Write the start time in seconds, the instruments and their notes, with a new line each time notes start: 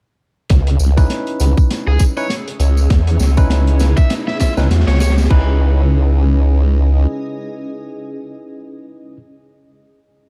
0.50 wobble bass C#2, ambient pad C#4, kick, snare, closed hi-hat, tambourine, riser
0.67 closed hi-hat
0.74 ambient pad G#4
0.79 wobble bass C#2, tambourine
0.97 tine electric piano C#4 D#4 E4 B4, kick, tambourine
1.10 snare, closed hi-hat, tambourine
1.25 ambient pad E6, closed hi-hat
1.40 wobble bass C#2, closed hi-hat, tambourine
1.57 kick, tambourine
1.71 snare, closed hi-hat, tambourine
1.87 wobble bass C#2, lead electric guitar G#4
1.99 kick, closed hi-hat, tambourine
2.17 tine electric piano C#4 D#4 E4 B4, lead electric guitar C#5, tambourine
2.30 snare, closed hi-hat, tambourine
2.48 closed hi-hat
2.60 wobble bass C#2, closed hi-hat, tambourine
2.77 tambourine
2.90 wobble bass E2, kick, snare, closed hi-hat, tambourine
3.07 closed hi-hat
3.19 wobble bass C#2, snare, tambourine
3.37 tine electric piano C#4 D#4 E4 B4, kick, tambourine
3.50 wobble bass C#2, snare, closed hi-hat, tambourine
3.67 closed hi-hat
3.79 snare, closed hi-hat, tambourine
3.97 lead electric guitar E5, kick, tambourine
4.10 snare, closed hi-hat, tambourine
4.28 lead electric guitar E5, snare
4.40 lead electric guitar E5, kick, snare, closed hi-hat, tambourine
4.57 wobble bass C#2, tine electric piano C#4 D#4 E4 B4, snare, tambourine
4.70 wobble bass E2, snare, closed hi-hat, tambourine
4.80 snare
4.87 wobble bass C#2, lead electric guitar C#5, snare, closed hi-hat
4.94 snare
5.00 lead electric guitar C#5, snare, closed hi-hat, tambourine
5.10 snare
5.18 snare, tambourine
5.24 snare
5.30 wobble bass C#2, ambient pad C#4, tine electric piano C#4 D#4 E4 B4, kick, crash
5.40 ambient pad G#4
5.49 ambient pad D#5